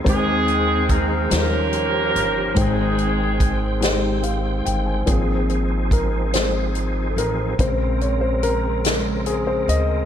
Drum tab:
HH |xxxxxx|xxxxxx|xxxxxx|xxxxxx|
SD |---o--|---o--|---o--|---o--|
BD |o-o---|o-o---|o-o---|o-----|